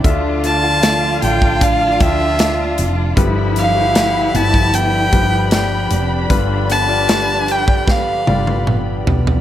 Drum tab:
HH |x-x-x-x-x-x-x-x-|x-x-x-x-x-x-x-x-|x-x-x-x---------|
SD |----o-------o---|----o-------o---|----o---o-------|
T1 |----------------|----------------|----------oo----|
T2 |----------------|----------------|------------o---|
FT |----------------|----------------|--------------oo|
BD |o------oo-o-----|o------o--o-----|o------oo-------|